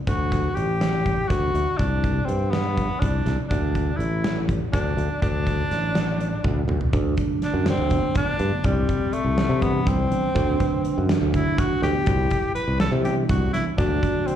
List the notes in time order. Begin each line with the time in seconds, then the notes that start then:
0.07 D2 F#4, kick, closed hi-hat
0.32 kick, snare, closed hi-hat
0.55 A1 G4, closed hi-hat
0.81 snare, closed hi-hat
1.06 kick, closed hi-hat
1.28 D2 F#4, kick, snare, closed hi-hat
1.54 D2, closed hi-hat
1.77 C2 D4, kick, closed hi-hat
2.04 kick, closed hi-hat
2.25 G2 C4, closed hi-hat
2.51 B3, snare, closed hi-hat
2.77 kick, closed hi-hat
3.00 C2 D4, kick, closed hi-hat
3.26 C2, snare, closed hi-hat
3.48 D2 D4, kick, closed hi-hat
3.75 kick, closed hi-hat
3.97 A1 E4, closed hi-hat
4.24 snare, closed hi-hat
4.49 kick, closed hi-hat
4.73 D2 D4, kick, closed hi-hat
4.97 D2, closed hi-hat
5.22 D2 D4, kick, closed hi-hat
5.47 kick, closed hi-hat
5.71 A1, snare, closed hi-hat
5.95 snare, closed hi-hat
6.20 closed hi-hat
6.44 D2, kick, high tom
6.68 D2, mid tom
6.81 floor tom
6.92 D2 D3 F#3 A3 D4, kick, closed hi-hat
7.17 D3 F#3 A3 D4, kick, closed hi-hat
7.42 D4, snare, closed hi-hat
7.54 F#2
7.66 D3 F#3 A3 C4 D4, snare, closed hi-hat
7.78 D2
7.90 D3 F#3 A3 B3, kick, closed hi-hat
8.15 D4, kick, closed hi-hat
8.39 G2, closed hi-hat
8.52 D3 F#3 A3 B3
8.64 C2 G3 C4, kick, closed hi-hat
8.89 kick, closed hi-hat
9.13 A3, closed hi-hat
9.25 C2
9.38 snare, closed hi-hat
9.49 C3
9.61 E3 G3 B3 D4 B4, kick, closed hi-hat
9.87 C2 C4, kick, closed hi-hat
10.11 E3 G3 B3 D4, closed hi-hat
10.35 D2 D3 F#3 A3 D4, kick, closed hi-hat
10.59 D3 F#3 A3 B4, kick, closed hi-hat
10.85 closed hi-hat
10.98 F#2
11.09 D3 F#3 A3 D4, snare, closed hi-hat
11.22 D2
11.33 D3 F#3 A3 D4 E4, kick, closed hi-hat
11.58 F#4, kick, closed hi-hat
11.82 D2 G4, snare, closed hi-hat
11.94 D3 F#3 A3 B3
12.00 F#4
12.06 C2 E4, kick, closed hi-hat
12.30 kick, closed hi-hat
12.54 B4, closed hi-hat
12.68 C2
12.80 A4, snare, closed hi-hat
12.92 C3
13.04 E3 G3 B3 D4 G4, closed hi-hat
13.29 C2 F#4, kick, closed hi-hat
13.53 E3 G3 B3 D4 E4, snare, closed hi-hat
13.77 D2 D3 F#3 A3 D4 F#4, kick, closed hi-hat
14.02 D3 F#3 A3 D4, kick, closed hi-hat
14.26 C4, closed hi-hat